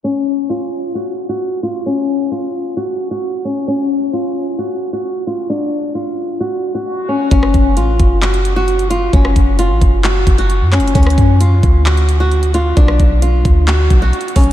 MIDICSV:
0, 0, Header, 1, 4, 480
1, 0, Start_track
1, 0, Tempo, 454545
1, 43, Time_signature, 4, 2, 24, 8
1, 15341, End_track
2, 0, Start_track
2, 0, Title_t, "Nylon-string guitar"
2, 0, Program_c, 0, 24
2, 44, Note_on_c, 0, 61, 97
2, 495, Note_off_c, 0, 61, 0
2, 525, Note_on_c, 0, 65, 89
2, 975, Note_off_c, 0, 65, 0
2, 1004, Note_on_c, 0, 66, 77
2, 1342, Note_off_c, 0, 66, 0
2, 1363, Note_on_c, 0, 66, 78
2, 1702, Note_off_c, 0, 66, 0
2, 1721, Note_on_c, 0, 65, 84
2, 1933, Note_off_c, 0, 65, 0
2, 1966, Note_on_c, 0, 61, 92
2, 2416, Note_off_c, 0, 61, 0
2, 2443, Note_on_c, 0, 65, 71
2, 2895, Note_off_c, 0, 65, 0
2, 2923, Note_on_c, 0, 66, 86
2, 3261, Note_off_c, 0, 66, 0
2, 3283, Note_on_c, 0, 66, 78
2, 3622, Note_off_c, 0, 66, 0
2, 3642, Note_on_c, 0, 61, 80
2, 3853, Note_off_c, 0, 61, 0
2, 3884, Note_on_c, 0, 61, 95
2, 4335, Note_off_c, 0, 61, 0
2, 4363, Note_on_c, 0, 65, 84
2, 4815, Note_off_c, 0, 65, 0
2, 4842, Note_on_c, 0, 66, 77
2, 5181, Note_off_c, 0, 66, 0
2, 5204, Note_on_c, 0, 66, 74
2, 5542, Note_off_c, 0, 66, 0
2, 5564, Note_on_c, 0, 65, 86
2, 5775, Note_off_c, 0, 65, 0
2, 5804, Note_on_c, 0, 62, 105
2, 6255, Note_off_c, 0, 62, 0
2, 6281, Note_on_c, 0, 65, 77
2, 6733, Note_off_c, 0, 65, 0
2, 6763, Note_on_c, 0, 66, 86
2, 7101, Note_off_c, 0, 66, 0
2, 7125, Note_on_c, 0, 66, 83
2, 7462, Note_off_c, 0, 66, 0
2, 7483, Note_on_c, 0, 61, 85
2, 7694, Note_off_c, 0, 61, 0
2, 7722, Note_on_c, 0, 61, 101
2, 8174, Note_off_c, 0, 61, 0
2, 8205, Note_on_c, 0, 65, 96
2, 8656, Note_off_c, 0, 65, 0
2, 8682, Note_on_c, 0, 66, 83
2, 9021, Note_off_c, 0, 66, 0
2, 9042, Note_on_c, 0, 66, 82
2, 9381, Note_off_c, 0, 66, 0
2, 9401, Note_on_c, 0, 65, 91
2, 9613, Note_off_c, 0, 65, 0
2, 9646, Note_on_c, 0, 61, 95
2, 10096, Note_off_c, 0, 61, 0
2, 10124, Note_on_c, 0, 65, 76
2, 10575, Note_off_c, 0, 65, 0
2, 10605, Note_on_c, 0, 66, 89
2, 10943, Note_off_c, 0, 66, 0
2, 10966, Note_on_c, 0, 66, 85
2, 11303, Note_off_c, 0, 66, 0
2, 11323, Note_on_c, 0, 61, 84
2, 11534, Note_off_c, 0, 61, 0
2, 11565, Note_on_c, 0, 61, 102
2, 12015, Note_off_c, 0, 61, 0
2, 12044, Note_on_c, 0, 65, 88
2, 12495, Note_off_c, 0, 65, 0
2, 12523, Note_on_c, 0, 66, 75
2, 12862, Note_off_c, 0, 66, 0
2, 12884, Note_on_c, 0, 66, 79
2, 13222, Note_off_c, 0, 66, 0
2, 13245, Note_on_c, 0, 65, 87
2, 13455, Note_off_c, 0, 65, 0
2, 13482, Note_on_c, 0, 62, 106
2, 13934, Note_off_c, 0, 62, 0
2, 13961, Note_on_c, 0, 65, 78
2, 14414, Note_off_c, 0, 65, 0
2, 14441, Note_on_c, 0, 66, 89
2, 14781, Note_off_c, 0, 66, 0
2, 14804, Note_on_c, 0, 66, 81
2, 15142, Note_off_c, 0, 66, 0
2, 15164, Note_on_c, 0, 61, 89
2, 15341, Note_off_c, 0, 61, 0
2, 15341, End_track
3, 0, Start_track
3, 0, Title_t, "808-style bass"
3, 0, Program_c, 1, 38
3, 7723, Note_on_c, 1, 30, 112
3, 7954, Note_off_c, 1, 30, 0
3, 7963, Note_on_c, 1, 30, 111
3, 8204, Note_on_c, 1, 33, 98
3, 8220, Note_off_c, 1, 30, 0
3, 8432, Note_off_c, 1, 33, 0
3, 8443, Note_on_c, 1, 30, 101
3, 9601, Note_off_c, 1, 30, 0
3, 9644, Note_on_c, 1, 30, 109
3, 9874, Note_off_c, 1, 30, 0
3, 9884, Note_on_c, 1, 30, 110
3, 10245, Note_on_c, 1, 33, 104
3, 10261, Note_off_c, 1, 30, 0
3, 10358, Note_off_c, 1, 33, 0
3, 10364, Note_on_c, 1, 30, 106
3, 10825, Note_off_c, 1, 30, 0
3, 10843, Note_on_c, 1, 30, 105
3, 11205, Note_on_c, 1, 42, 103
3, 11221, Note_off_c, 1, 30, 0
3, 11384, Note_on_c, 1, 30, 101
3, 11400, Note_off_c, 1, 42, 0
3, 11555, Note_off_c, 1, 30, 0
3, 11564, Note_on_c, 1, 38, 111
3, 11794, Note_off_c, 1, 38, 0
3, 11805, Note_on_c, 1, 42, 106
3, 12265, Note_off_c, 1, 42, 0
3, 12284, Note_on_c, 1, 38, 105
3, 13441, Note_off_c, 1, 38, 0
3, 13484, Note_on_c, 1, 35, 115
3, 13714, Note_off_c, 1, 35, 0
3, 13724, Note_on_c, 1, 35, 108
3, 14184, Note_off_c, 1, 35, 0
3, 14204, Note_on_c, 1, 38, 101
3, 14664, Note_off_c, 1, 38, 0
3, 14683, Note_on_c, 1, 35, 103
3, 14913, Note_off_c, 1, 35, 0
3, 15164, Note_on_c, 1, 35, 106
3, 15341, Note_off_c, 1, 35, 0
3, 15341, End_track
4, 0, Start_track
4, 0, Title_t, "Drums"
4, 7723, Note_on_c, 9, 36, 125
4, 7723, Note_on_c, 9, 42, 79
4, 7829, Note_off_c, 9, 36, 0
4, 7829, Note_off_c, 9, 42, 0
4, 7844, Note_on_c, 9, 37, 106
4, 7949, Note_off_c, 9, 37, 0
4, 7963, Note_on_c, 9, 36, 97
4, 7963, Note_on_c, 9, 42, 79
4, 8069, Note_off_c, 9, 36, 0
4, 8069, Note_off_c, 9, 42, 0
4, 8202, Note_on_c, 9, 42, 93
4, 8308, Note_off_c, 9, 42, 0
4, 8443, Note_on_c, 9, 36, 104
4, 8443, Note_on_c, 9, 42, 77
4, 8549, Note_off_c, 9, 36, 0
4, 8549, Note_off_c, 9, 42, 0
4, 8684, Note_on_c, 9, 39, 115
4, 8684, Note_on_c, 9, 42, 54
4, 8789, Note_off_c, 9, 42, 0
4, 8790, Note_off_c, 9, 39, 0
4, 8805, Note_on_c, 9, 42, 54
4, 8911, Note_off_c, 9, 42, 0
4, 8924, Note_on_c, 9, 42, 80
4, 9030, Note_off_c, 9, 42, 0
4, 9165, Note_on_c, 9, 42, 38
4, 9270, Note_off_c, 9, 42, 0
4, 9285, Note_on_c, 9, 42, 60
4, 9390, Note_off_c, 9, 42, 0
4, 9405, Note_on_c, 9, 42, 85
4, 9511, Note_off_c, 9, 42, 0
4, 9644, Note_on_c, 9, 36, 120
4, 9645, Note_on_c, 9, 42, 76
4, 9750, Note_off_c, 9, 36, 0
4, 9750, Note_off_c, 9, 42, 0
4, 9766, Note_on_c, 9, 37, 105
4, 9871, Note_off_c, 9, 37, 0
4, 9884, Note_on_c, 9, 36, 97
4, 9885, Note_on_c, 9, 42, 85
4, 9990, Note_off_c, 9, 36, 0
4, 9991, Note_off_c, 9, 42, 0
4, 10125, Note_on_c, 9, 42, 94
4, 10230, Note_off_c, 9, 42, 0
4, 10364, Note_on_c, 9, 36, 103
4, 10365, Note_on_c, 9, 42, 76
4, 10470, Note_off_c, 9, 36, 0
4, 10470, Note_off_c, 9, 42, 0
4, 10604, Note_on_c, 9, 42, 65
4, 10605, Note_on_c, 9, 39, 119
4, 10710, Note_off_c, 9, 39, 0
4, 10710, Note_off_c, 9, 42, 0
4, 10843, Note_on_c, 9, 36, 101
4, 10843, Note_on_c, 9, 42, 83
4, 10949, Note_off_c, 9, 36, 0
4, 10949, Note_off_c, 9, 42, 0
4, 10964, Note_on_c, 9, 42, 48
4, 11070, Note_off_c, 9, 42, 0
4, 11084, Note_on_c, 9, 42, 61
4, 11189, Note_off_c, 9, 42, 0
4, 11324, Note_on_c, 9, 42, 48
4, 11325, Note_on_c, 9, 39, 67
4, 11404, Note_off_c, 9, 42, 0
4, 11404, Note_on_c, 9, 42, 55
4, 11431, Note_off_c, 9, 39, 0
4, 11484, Note_off_c, 9, 42, 0
4, 11484, Note_on_c, 9, 42, 60
4, 11564, Note_off_c, 9, 42, 0
4, 11564, Note_on_c, 9, 36, 123
4, 11564, Note_on_c, 9, 42, 69
4, 11644, Note_off_c, 9, 42, 0
4, 11644, Note_on_c, 9, 42, 74
4, 11669, Note_off_c, 9, 36, 0
4, 11685, Note_on_c, 9, 37, 104
4, 11724, Note_off_c, 9, 42, 0
4, 11724, Note_on_c, 9, 42, 83
4, 11790, Note_off_c, 9, 37, 0
4, 11804, Note_on_c, 9, 36, 92
4, 11805, Note_off_c, 9, 42, 0
4, 11805, Note_on_c, 9, 42, 77
4, 11910, Note_off_c, 9, 36, 0
4, 11910, Note_off_c, 9, 42, 0
4, 12044, Note_on_c, 9, 42, 96
4, 12150, Note_off_c, 9, 42, 0
4, 12284, Note_on_c, 9, 36, 104
4, 12284, Note_on_c, 9, 42, 78
4, 12389, Note_off_c, 9, 36, 0
4, 12389, Note_off_c, 9, 42, 0
4, 12523, Note_on_c, 9, 42, 53
4, 12524, Note_on_c, 9, 39, 118
4, 12629, Note_off_c, 9, 39, 0
4, 12629, Note_off_c, 9, 42, 0
4, 12644, Note_on_c, 9, 42, 55
4, 12750, Note_off_c, 9, 42, 0
4, 12763, Note_on_c, 9, 42, 81
4, 12869, Note_off_c, 9, 42, 0
4, 13004, Note_on_c, 9, 42, 37
4, 13110, Note_off_c, 9, 42, 0
4, 13124, Note_on_c, 9, 42, 59
4, 13229, Note_off_c, 9, 42, 0
4, 13244, Note_on_c, 9, 42, 83
4, 13349, Note_off_c, 9, 42, 0
4, 13483, Note_on_c, 9, 42, 80
4, 13484, Note_on_c, 9, 36, 123
4, 13589, Note_off_c, 9, 36, 0
4, 13589, Note_off_c, 9, 42, 0
4, 13604, Note_on_c, 9, 37, 109
4, 13709, Note_off_c, 9, 37, 0
4, 13723, Note_on_c, 9, 42, 84
4, 13724, Note_on_c, 9, 36, 95
4, 13829, Note_off_c, 9, 36, 0
4, 13829, Note_off_c, 9, 42, 0
4, 13963, Note_on_c, 9, 42, 94
4, 14069, Note_off_c, 9, 42, 0
4, 14204, Note_on_c, 9, 36, 101
4, 14204, Note_on_c, 9, 42, 77
4, 14309, Note_off_c, 9, 36, 0
4, 14309, Note_off_c, 9, 42, 0
4, 14443, Note_on_c, 9, 42, 64
4, 14444, Note_on_c, 9, 39, 117
4, 14549, Note_off_c, 9, 39, 0
4, 14549, Note_off_c, 9, 42, 0
4, 14683, Note_on_c, 9, 36, 99
4, 14683, Note_on_c, 9, 42, 81
4, 14789, Note_off_c, 9, 36, 0
4, 14789, Note_off_c, 9, 42, 0
4, 14923, Note_on_c, 9, 42, 39
4, 15003, Note_off_c, 9, 42, 0
4, 15003, Note_on_c, 9, 42, 50
4, 15082, Note_off_c, 9, 42, 0
4, 15082, Note_on_c, 9, 42, 61
4, 15162, Note_off_c, 9, 42, 0
4, 15162, Note_on_c, 9, 42, 47
4, 15162, Note_on_c, 9, 46, 84
4, 15164, Note_on_c, 9, 36, 96
4, 15243, Note_off_c, 9, 42, 0
4, 15243, Note_on_c, 9, 42, 64
4, 15268, Note_off_c, 9, 46, 0
4, 15270, Note_off_c, 9, 36, 0
4, 15341, Note_off_c, 9, 42, 0
4, 15341, End_track
0, 0, End_of_file